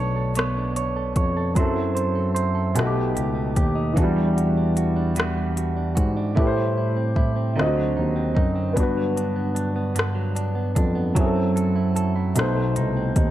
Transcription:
0.00 1.13 B1 medium
0.00 1.50 B2 medium
0.00 1.52 A3 medium
0.00 0.36 B3 medium
0.00 0.56 D4 soft
0.00 1.54 D4 medium
0.00 0.16 A4 soft
0.00 0.36 C#5 medium
0.00 1.55 C#5 medium
0.16 0.96 A4 soft
0.35 1.65 B3 medium
0.35 0.75 C#5 medium
0.35 cross-stick medium
0.35 closed hi-hat medium
0.57 1.65 D4 soft
0.76 1.16 C#5 medium
0.76 closed hi-hat soft
0.96 1.36 A4 medium
1.16 1.53 F2 medium
1.16 1.57 C#5 medium
1.16 kick medium
1.16 closed hi-hat soft
1.37 2.15 A4 medium
1.55 2.73 F#2 medium
1.55 2.76 F#3 medium
1.55 3.18 F#3 medium
1.55 2.77 C4 medium
1.55 2.78 E4 medium
1.55 1.94 C5 medium
1.55 kick loud
1.55 closed hi-hat medium
1.60 2.78 A4 medium
1.76 2.84 E4 soft
1.95 2.33 C5 medium
1.95 closed hi-hat soft
2.15 2.54 A4 soft
2.35 2.84 C5 medium
2.35 closed hi-hat medium
2.55 2.75 A4 medium
2.75 3.14 B1 medium
2.75 4.04 B2 medium
2.75 3.96 B2 medium
2.75 3.97 A3 medium
2.75 3.98 D#4 medium
2.75 3.15 G4 medium
2.75 closed hi-hat medium
2.79 2.85 F#4 medium
2.79 cross-stick medium
2.86 4.02 G4 medium
2.95 4.04 A3 medium
3.15 3.54 C#2 medium
3.15 3.56 G4 medium
3.15 closed hi-hat medium
3.35 3.74 D#4 soft
3.56 3.93 D#2 medium
3.56 3.96 G4 medium
3.56 kick medium
3.56 closed hi-hat soft
3.75 4.04 D#4 medium
3.94 6.31 E3 medium
3.94 5.17 E3 medium
3.94 6.33 D4 medium
3.94 4.35 F#4 medium
3.94 kick medium
3.94 closed hi-hat medium
3.98 5.97 E2 medium
3.98 6.34 F#4 medium
4.03 6.36 G3 medium
4.16 5.37 G3 medium
4.36 4.76 F#4 medium
4.36 closed hi-hat soft
4.57 4.95 D4 medium
4.77 5.16 F#4 medium
4.77 closed hi-hat soft
4.96 5.75 D4 medium
5.16 6.45 E3 medium
5.16 5.55 F#4 medium
5.16 cross-stick medium
5.16 closed hi-hat medium
5.37 6.45 G3 medium
5.57 5.94 F#4 medium
5.57 closed hi-hat soft
5.77 6.15 D4 soft
5.95 6.33 G#2 medium
5.95 6.36 F#4 medium
5.95 kick medium
5.95 closed hi-hat soft
6.17 6.45 D4 medium
6.35 7.64 A2 medium
6.35 7.57 A2 medium
6.35 7.56 A3 medium
6.35 6.76 E4 medium
6.35 7.57 E4 medium
6.35 7.58 G4 medium
6.35 kick loud
6.40 6.45 B4 medium
6.47 7.62 C5 medium
6.56 7.64 G3 medium
6.77 7.15 E4 medium
6.97 7.35 C4 medium
7.16 7.56 E4 medium
7.16 kick medium
7.36 7.64 C4 soft
7.56 7.94 D2 medium
7.56 11.06 D3 medium
7.56 8.76 D3 medium
7.56 8.77 C4 medium
7.56 7.96 D#4 medium
7.56 7.64 F4 soft
7.56 cross-stick medium
7.61 8.79 D#5 medium
7.66 8.78 F#4 medium
7.77 8.97 F#3 soft
7.97 8.34 D#2 medium
7.97 8.34 D#4 soft
8.16 8.54 C4 soft
8.35 8.73 F#2 medium
8.35 8.76 D#4 medium
8.35 kick medium
8.55 8.84 C4 medium
8.73 9.94 G2 medium
8.73 11.11 B3 medium
8.73 9.15 D4 medium
8.73 11.13 D4 medium
8.73 kick medium
8.73 closed hi-hat medium
8.78 10.73 G2 medium
8.78 11.14 F#4 medium
8.83 11.16 B4 medium
8.97 10.15 F#3 soft
9.17 9.54 D4 medium
9.17 closed hi-hat soft
9.36 9.75 B3 soft
9.55 9.95 D4 medium
9.55 closed hi-hat soft
9.76 10.54 B3 soft
9.95 11.24 G2 medium
9.95 10.34 D4 medium
9.95 closed hi-hat medium
9.99 cross-stick medium
10.15 11.15 F#3 soft
10.36 10.74 D4 medium
10.36 closed hi-hat soft
10.55 10.94 B3 soft
10.75 11.13 F2 medium
10.75 11.24 D4 medium
10.75 kick medium
10.75 closed hi-hat soft
10.95 11.24 B3 medium
11.15 12.33 F#2 medium
11.15 12.36 F#3 medium
11.15 12.56 F#3 medium
11.15 12.37 C4 medium
11.15 12.37 E4 medium
11.15 11.56 A4 medium
11.15 kick loud
11.15 closed hi-hat medium
11.20 11.25 G#4 medium
11.26 12.41 A4 medium
11.35 12.44 C4 soft
11.56 11.95 A4 medium
11.56 closed hi-hat soft
11.76 12.14 E4 soft
11.96 12.44 A4 medium
11.96 closed hi-hat medium
12.16 12.36 E4 medium
12.35 12.74 B1 medium
12.35 13.31 B2 medium
12.35 13.31 A3 medium
12.35 12.75 D#4 medium
12.35 13.31 D#4 medium
12.35 cross-stick medium
12.35 closed hi-hat medium
12.40 13.31 C5 medium
12.56 13.31 A3 soft
12.76 13.14 C2 medium
12.76 13.15 D#4 medium
12.76 closed hi-hat medium
12.97 13.31 C4 medium
13.16 13.31 D#2 medium
13.16 13.31 D#4 medium
13.16 kick medium
13.16 closed hi-hat soft

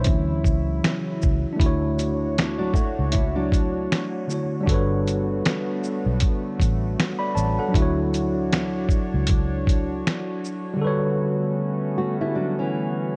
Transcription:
0.00 1.17 E4 medium
0.00 1.57 E4 medium
0.00 1.15 C#5 medium
0.04 0.42 D2 loud
0.04 1.57 C#3 medium
0.04 1.55 E3 medium
0.04 1.57 F#3 medium
0.04 1.55 F#3 soft
0.04 1.55 C#4 medium
0.04 kick medium
0.04 closed hi-hat medium
0.44 0.80 C#2 loud
0.44 kick medium
0.44 shaker soft
0.84 finger snap medium
0.84 snare loud
0.84 closed hi-hat medium
1.22 1.44 C#2 medium
1.22 kick medium
1.22 shaker medium
1.53 4.23 A3 medium
1.53 4.21 D4 medium
1.59 2.94 D2 loud
1.59 4.64 D4 medium
1.59 4.25 E4 medium
1.59 4.64 F#4 medium
1.59 4.64 C#5 medium
1.59 kick loud
1.59 closed hi-hat medium
1.63 4.26 F#4 medium
1.63 4.28 C#5 medium
1.99 closed hi-hat soft
1.99 shaker soft
2.38 finger snap medium
2.38 snare loud
2.38 closed hi-hat medium
2.58 2.74 F#3 medium
2.58 2.73 D4 medium
2.73 3.11 A3 medium
2.73 3.11 F#4 medium
2.73 kick medium
2.73 shaker soft
2.99 3.87 C#2 medium
3.12 3.35 E4 medium
3.12 kick medium
3.12 closed hi-hat medium
3.36 4.48 F#3 medium
3.36 4.47 D4 medium
3.52 kick loud
3.52 closed hi-hat soft
3.52 shaker soft
3.92 finger snap medium
3.92 snare loud
3.92 closed hi-hat medium
4.27 4.66 D3 medium
4.27 4.67 A3 medium
4.27 4.68 E4 medium
4.27 shaker medium
4.32 4.65 F#4 soft
4.32 4.70 C#5 medium
4.61 7.67 G3 medium
4.61 7.69 D4 medium
4.66 5.40 G1 loud
4.66 7.72 D3 medium
4.66 7.72 A3 medium
4.66 7.71 B3 medium
4.66 7.70 F#4 medium
4.66 13.16 F#4 medium
4.66 6.95 A4 medium
4.66 kick loud
4.66 closed hi-hat medium
4.71 6.96 B4 medium
4.71 6.97 C#5 medium
5.08 closed hi-hat soft
5.08 shaker soft
5.45 finger snap medium
5.45 snare loud
5.45 closed hi-hat medium
5.84 shaker soft
6.06 6.20 B1 medium
6.20 kick medium
6.20 closed hi-hat medium
6.60 6.95 A1 medium
6.60 kick medium
6.60 closed hi-hat soft
6.60 shaker soft
7.00 finger snap medium
7.00 snare loud
7.00 closed hi-hat medium
7.19 7.35 D5 medium
7.19 7.34 B5 medium
7.35 7.57 A1 medium
7.35 7.58 C#5 medium
7.35 7.57 A5 medium
7.35 shaker medium
7.59 7.96 A4 medium
7.59 7.95 F#5 medium
7.68 10.75 F#3 medium
7.68 10.77 D4 medium
7.74 9.09 D2 medium
7.74 10.79 D4 medium
7.74 10.78 E4 medium
7.74 10.79 C#5 medium
7.74 kick loud
7.74 closed hi-hat medium
7.78 10.78 F#4 medium
7.78 10.82 C#5 medium
8.14 closed hi-hat soft
8.14 shaker soft
8.53 finger snap medium
8.53 snare loud
8.53 closed hi-hat medium
8.89 kick loud
8.89 shaker soft
9.14 10.02 C#2 medium
9.27 kick loud
9.27 closed hi-hat medium
9.67 kick loud
9.67 closed hi-hat medium
9.67 shaker soft
10.07 finger snap medium
10.07 snare loud
10.07 closed hi-hat medium
10.45 shaker medium
10.74 13.16 D3 medium
10.74 13.16 G3 medium
10.79 13.16 F#4 medium
10.79 13.16 A4 medium
10.84 13.16 A3 medium
10.84 13.16 B3 medium
10.84 13.16 C#4 medium
10.84 13.16 B4 medium
10.84 13.16 C#5 loud
11.98 12.20 A3 medium
11.98 12.19 F#4 medium
12.21 12.35 G3 medium
12.21 12.35 E4 medium
12.35 12.58 F#3 medium
12.35 12.57 D4 medium
12.59 13.16 E3 medium
12.59 13.16 C#4 medium

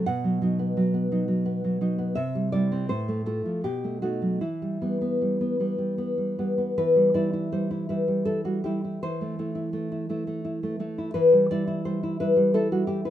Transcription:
0.06 2.14 B2 medium
0.06 1.78 F#5 medium
0.24 0.41 F#3 soft
0.42 0.76 F#3 soft
0.42 1.11 D#4 soft
0.59 0.93 B3 medium
0.77 1.10 F#3 medium
0.94 1.44 B3 soft
1.12 1.27 F#3 soft
1.12 1.80 D#4 soft
1.28 1.63 F#3 soft
1.46 1.97 B3 medium
1.64 1.80 F#3 soft
1.81 2.14 F#3 soft
1.81 2.14 D#4 medium
1.98 2.17 B3 soft
2.15 2.87 C3 medium
2.15 2.51 E5 medium
2.35 2.52 G3 soft
2.52 2.86 G3 soft
2.52 2.86 E4 soft
2.52 2.88 D5 medium
2.72 2.90 C4 medium
2.89 3.45 A2 medium
2.89 3.25 C5 medium
3.08 3.25 A3 soft
3.26 3.60 A3 soft
3.26 3.61 F4 soft
3.26 3.63 A4 medium
3.46 3.65 F3 soft
3.64 4.40 B2 medium
3.64 4.01 G4 medium
3.84 4.01 A3 soft
4.02 4.38 A3 soft
4.02 4.39 D#4 soft
4.02 4.40 F#4 medium
4.22 4.41 F#3 soft
4.41 6.73 E3 medium
4.41 6.35 E4 medium
4.62 4.80 G3 soft
4.82 5.20 G3 soft
4.82 5.00 B3 soft
5.01 5.40 B3 soft
5.22 5.59 G3 soft
5.41 5.59 B3 soft
5.60 5.77 G3 soft
5.60 5.97 B3 soft
5.78 6.17 G3 soft
5.98 6.38 B3 soft
6.18 6.37 G3 soft
6.39 6.74 G3 soft
6.39 6.57 B3 soft
6.58 6.77 B3 soft
6.78 8.98 E3 medium
6.78 7.14 B4 medium
6.96 7.13 G3 soft
7.14 7.51 G3 soft
7.14 7.32 E4 soft
7.14 7.51 D5 medium
7.33 7.70 E4 soft
7.52 7.89 G3 soft
7.52 7.88 C5 medium
7.71 7.89 E4 soft
7.89 8.07 G3 soft
7.89 8.25 E4 soft
7.89 8.24 B4 medium
8.08 8.43 G3 soft
8.25 8.64 E4 soft
8.25 8.44 A4 medium
8.45 8.64 G3 soft
8.45 8.63 F#4 medium
8.64 8.99 G3 soft
8.64 8.83 E4 soft
8.64 9.01 G4 medium
8.84 9.02 E4 soft
9.03 11.11 E3 medium
9.03 10.76 C5 medium
9.21 9.38 A3 soft
9.39 9.72 A3 soft
9.39 9.54 E4 soft
9.55 9.91 E4 soft
9.73 10.08 A3 soft
9.92 10.09 E4 soft
10.10 10.26 A3 soft
10.10 10.44 E4 soft
10.27 10.62 A3 soft
10.45 10.79 E4 soft
10.63 10.79 A3 soft
10.80 11.11 A3 soft
10.80 10.97 E4 soft
10.98 11.14 E4 soft
11.14 13.10 E3 medium
11.14 11.48 B4 medium
11.32 11.50 G3 soft
11.51 11.84 G3 soft
11.51 11.66 E4 medium
11.51 11.84 D5 medium
11.67 12.02 E4 medium
11.85 12.20 G3 soft
11.85 12.19 C5 medium
12.03 12.19 E4 medium
12.20 12.35 G3 soft
12.20 12.53 E4 soft
12.20 12.53 B4 medium
12.36 12.70 G3 medium
12.54 12.87 E4 medium
12.54 12.71 A4 medium
12.72 12.87 G3 soft
12.72 12.87 F#4 medium
12.87 13.10 G3 soft
12.87 13.04 E4 medium
12.87 13.04 G4 medium
13.05 13.10 E4 soft
13.05 13.10 B4 medium

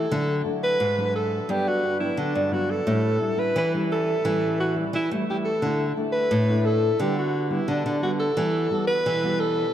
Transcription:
0.00 0.36 A4 medium
0.11 0.77 D3 medium
0.11 0.40 F#3 soft
0.11 0.40 A3 medium
0.11 0.41 D4 medium
0.45 0.78 F#3 medium
0.45 0.78 A3 medium
0.45 0.78 D4 medium
0.63 1.11 B4 loud
0.80 1.39 G#2 medium
0.98 1.44 F#3 medium
0.98 1.44 D4 medium
1.15 1.52 A4 medium
1.48 2.14 G2 medium
1.48 1.81 F#3 medium
1.48 1.81 B3 medium
1.48 1.82 D4 medium
1.48 1.70 G4 loud
1.68 2.00 F#4 medium
1.99 2.46 F#3 medium
1.99 2.46 B3 medium
1.99 2.46 D4 medium
1.99 2.21 E4 medium
2.18 2.83 D3 medium
2.18 2.54 D4 medium
2.35 2.79 G2 medium
2.51 2.84 F#3 medium
2.51 2.84 B3 soft
2.51 2.84 D4 medium
2.51 2.72 F#4 medium
2.70 3.41 A4 loud
2.86 3.52 A2 medium
2.86 3.07 G3 medium
2.86 3.07 C#4 medium
2.86 3.08 E4 medium
3.20 3.33 G3 medium
3.20 3.33 C#4 medium
3.20 3.33 E4 medium
3.37 3.67 G3 medium
3.37 3.67 C#4 medium
3.37 3.67 E4 medium
3.37 3.56 B4 medium
3.56 4.21 E3 medium
3.56 3.73 B4 medium
3.74 4.20 G3 medium
3.74 4.20 C#4 medium
3.74 4.20 E4 medium
3.92 4.56 A4 loud
4.25 4.91 A2 medium
4.25 4.83 E3 medium
4.25 4.71 G3 medium
4.25 4.71 C#4 medium
4.25 4.72 E4 medium
4.60 4.75 F#4 medium
4.76 5.05 G3 medium
4.76 5.05 C#4 medium
4.76 5.05 E4 medium
4.95 5.60 E3 medium
4.95 5.10 E4 medium
5.11 5.23 G3 medium
5.11 5.55 A3 medium
5.11 5.24 C#4 medium
5.11 5.24 E4 medium
5.29 5.51 G3 medium
5.29 5.51 C#4 medium
5.29 5.51 E4 medium
5.29 5.38 G4 medium
5.45 5.84 A4 medium
5.63 6.28 D3 soft
5.63 5.83 A3 soft
5.63 5.83 D4 soft
5.63 5.84 E4 medium
5.97 6.43 A3 medium
5.97 6.43 D4 medium
5.97 6.43 E4 medium
6.12 6.67 B4 loud
6.33 6.97 A2 medium
6.49 6.95 A3 medium
6.49 6.95 D4 medium
6.49 6.95 E4 medium
6.65 7.03 A4 loud
7.00 7.66 D3 medium
7.00 7.46 G3 medium
7.00 7.46 B3 medium
7.00 7.47 F#4 medium
7.00 7.18 G4 medium
7.18 7.53 F#4 medium
7.50 7.97 G3 medium
7.50 7.97 B3 medium
7.50 7.69 E4 medium
7.50 7.97 F#4 medium
7.68 8.34 D3 medium
7.68 8.02 D4 medium
7.86 8.30 D3 medium
8.02 8.25 G3 medium
8.02 8.25 B3 medium
8.02 8.25 F#4 medium
8.02 8.11 F#4 medium
8.20 8.85 A4 medium
8.37 9.03 E3 soft
8.37 8.66 G3 soft
8.37 8.67 B3 medium
8.37 8.67 F#4 medium
8.70 9.03 G3 soft
8.70 9.04 B3 medium
8.70 9.04 F#4 medium
8.87 9.42 B4 loud
9.06 9.71 B2 medium
9.06 9.65 E3 medium
9.23 9.70 G3 medium
9.23 9.70 B3 medium
9.23 9.70 F#4 medium
9.40 9.73 A4 loud

